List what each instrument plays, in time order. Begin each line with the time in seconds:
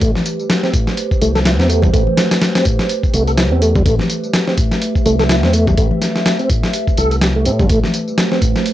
Already playing: analog synth pad A3 G4 B4
0.01 fingered electric bass A1, tonewheel organ A3, analog synth pad C5, kick, closed hi-hat, tambourine
0.15 snare, high conga
0.26 closed hi-hat, tambourine
0.40 tambourine
0.50 snare, closed hi-hat, tambourine
0.63 tonewheel organ C4, snare, high bongo
0.74 fingered electric bass A1, kick, closed hi-hat, tambourine
0.87 snare, tambourine
0.97 closed hi-hat, tambourine
1.11 kick, tambourine
1.22 fingered electric bass C2, tonewheel organ A3, closed hi-hat, tambourine
1.35 tonewheel organ A4, snare, tambourine
1.45 tonewheel organ E4, snare, closed hi-hat, tambourine
1.59 fingered electric bass E2, tonewheel organ C4, snare
1.69 tonewheel organ A3, closed hi-hat, tambourine
1.82 tonewheel organ G3, kick, tambourine, high conga, low conga
1.93 fingered electric bass A1, tonewheel organ A3, kick, closed hi-hat, tambourine
2.07 high conga
2.17 snare, closed hi-hat, tambourine
2.31 snare, closed hi-hat, tambourine
2.42 snare, closed hi-hat, tambourine
2.55 tonewheel organ C4, snare, closed hi-hat, high bongo
2.65 fingered electric bass A1, kick, closed hi-hat, tambourine
2.79 snare, tambourine, high bongo
2.89 closed hi-hat, tambourine
3.03 kick, tambourine
3.14 fingered electric bass C2, tonewheel organ A3, closed hi-hat, tambourine
3.27 tonewheel organ A4, closed hi-hat, tambourine
3.38 tonewheel organ E4, snare, closed hi-hat, tambourine
3.52 fingered electric bass E2, tonewheel organ C4
3.62 tonewheel organ A3, closed hi-hat, tambourine
3.75 tonewheel organ G3, kick, tambourine, high conga, low conga
3.85 fingered electric bass A1, tonewheel organ A3, analog synth pad E5, kick, closed hi-hat, tambourine
3.99 snare, high conga
4.10 closed hi-hat, tambourine
4.24 tambourine
4.34 snare, closed hi-hat, tambourine
4.47 tonewheel organ C4, snare, high bongo
4.58 fingered electric bass A1, kick, closed hi-hat, tambourine
4.71 snare, tambourine
4.82 closed hi-hat, tambourine
4.95 kick, tambourine
5.06 fingered electric bass C2, tonewheel organ A3, closed hi-hat, tambourine
5.19 tonewheel organ A4, snare, tambourine
5.29 tonewheel organ E4, snare, closed hi-hat, tambourine
5.43 fingered electric bass E2, tonewheel organ C4, snare
5.53 tonewheel organ A3, closed hi-hat, tambourine
5.67 tonewheel organ G3, kick, tambourine, high conga, low conga
5.77 fingered electric bass A1, tonewheel organ A3, kick, closed hi-hat, tambourine
5.91 high conga
6.02 snare, closed hi-hat, tambourine
6.16 snare, tambourine
6.26 snare, closed hi-hat, tambourine
6.39 tonewheel organ C4, closed hi-hat, high bongo
6.50 fingered electric bass A1, kick, closed hi-hat, tambourine
6.63 snare, tambourine, high bongo
6.73 closed hi-hat, tambourine
6.87 kick, tambourine
6.97 fingered electric bass C2, tonewheel organ A4, closed hi-hat, tambourine
7.11 tonewheel organ A4, closed hi-hat, tambourine
7.21 tonewheel organ G4, snare, closed hi-hat, tambourine
7.36 tonewheel organ A3
7.45 fingered electric bass A2, tonewheel organ C4, closed hi-hat, tambourine
7.59 fingered electric bass G1, tonewheel organ G3, kick, tambourine, high conga, low conga
7.69 fingered electric bass A1, tonewheel organ A3, analog synth pad C5, kick, closed hi-hat, tambourine
7.84 snare, high conga
7.94 closed hi-hat, tambourine
8.08 tambourine
8.18 snare, closed hi-hat, tambourine
8.31 tonewheel organ C4, snare, high bongo
8.42 fingered electric bass A1, kick, closed hi-hat, tambourine
8.56 snare, tambourine
8.66 closed hi-hat, tambourine